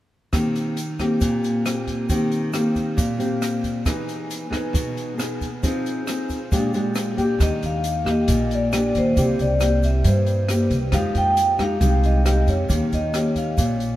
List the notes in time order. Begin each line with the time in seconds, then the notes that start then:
0.32 D#3 A#3 C4 G4, kick, cross-stick, closed hi-hat, shaker
0.55 closed hi-hat, shaker
0.77 closed hi-hat, shaker
0.99 A#3 C4 G4, kick, cross-stick, closed hi-hat, shaker
1.21 A#2, kick, closed hi-hat, shaker
1.44 closed hi-hat, shaker
1.65 A#3 C4 G4, cross-stick, closed hi-hat, shaker
1.87 kick, closed hi-hat, shaker
2.09 D#3 A#3 C4 G4, kick, closed hi-hat, shaker
2.31 closed hi-hat, shaker
2.53 A#3 C4 G4, cross-stick, closed hi-hat, shaker
2.76 kick, closed hi-hat, shaker
2.96 A#2, kick, closed hi-hat, shaker
3.18 A#3 C4 G4, closed hi-hat, shaker
3.42 cross-stick, closed hi-hat, shaker
3.64 kick, closed hi-hat, shaker
3.85 E3 B3 D#4 G#4, kick, cross-stick, closed hi-hat, shaker
4.09 closed hi-hat, shaker
4.31 closed hi-hat, shaker
4.50 B3 D#4 G#4, kick, cross-stick, closed hi-hat, shaker
4.73 B2, kick, closed hi-hat, shaker
4.97 closed hi-hat, shaker
5.18 B3 D#4 G#4, cross-stick, closed hi-hat, shaker
5.41 kick, closed hi-hat, shaker
5.63 F3 C4 D#4 G#4, kick, closed hi-hat, shaker
5.86 closed hi-hat, shaker
6.07 C4 D#4 G#4, cross-stick, closed hi-hat, shaker
6.29 kick, closed hi-hat, shaker
6.51 A#2 G#3 D4 G4, kick, closed hi-hat, shaker
6.73 G#3 D4 G4, closed hi-hat, shaker
6.95 cross-stick, closed hi-hat, shaker
7.17 A#3 D4 G4, kick, closed hi-hat, shaker
7.39 D#2 D#3 D#5, kick, cross-stick, closed hi-hat, shaker
7.62 D#2 F5, closed hi-hat, shaker
7.84 closed hi-hat, shaker
8.05 A#3 G4, kick, cross-stick, closed hi-hat, shaker
8.11 D#5
8.28 A#1 A#2, kick, closed hi-hat, shaker
8.51 D5, closed hi-hat, shaker
8.72 A#3 D4 G4, cross-stick, closed hi-hat, shaker
8.95 D#2 C5, kick, closed hi-hat, shaker
9.17 C2 C3 A#3 E4 G4, kick, closed hi-hat, shaker
9.39 C2 D5, closed hi-hat, shaker
9.60 A#3 E4 G4, cross-stick, closed hi-hat, shaker
9.83 E5, kick, closed hi-hat, shaker
10.04 G2 C5, kick, closed hi-hat, shaker
10.26 closed hi-hat, shaker
10.49 A#3 E4 G4, cross-stick, closed hi-hat, shaker
10.70 C2, kick, closed hi-hat, shaker
10.92 F2 F3 G#3 D#4 G4 F5, kick, cross-stick, closed hi-hat, shaker
11.15 F2 G5, closed hi-hat, shaker
11.37 closed hi-hat, shaker
11.58 G#3 D#4 G4, kick, cross-stick, closed hi-hat, shaker
11.63 F5
11.81 C2 C3 G#3 D#4 G4, kick, closed hi-hat, shaker
12.03 D#5, closed hi-hat, shaker
12.25 G#3 D#4 G4, cross-stick, closed hi-hat, shaker
12.47 F2 C#5, kick, closed hi-hat, shaker
12.68 D#2 D#3 A#3 C#4 G4, kick, closed hi-hat, shaker
12.92 D#2 D#5, closed hi-hat, shaker
13.14 A#3 C#4 G4, cross-stick, closed hi-hat, shaker
13.36 F5, kick, closed hi-hat, shaker
13.57 A#1 A#2 C#5, kick, closed hi-hat, shaker
13.80 closed hi-hat, shaker